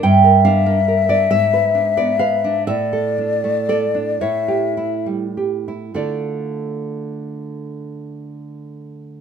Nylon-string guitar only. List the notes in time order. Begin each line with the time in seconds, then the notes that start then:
0.03 G2 G5
0.24 A#4
0.45 D4 F5
0.66 A#3
0.88 A#4
1.09 D4 D5
1.31 G#2 E5
1.53 B4
1.75 D4
1.97 B3 D5
2.19 B4 F5
2.44 D4
2.67 A2 E5
2.93 A4
3.18 D4
3.44 A3
3.69 A4 D5
3.95 D4
4.21 A2 C#5
4.48 G4
4.77 E4
5.06 G3
5.37 G4
5.68 E4
5.94 D3 A3 F4 A4 D5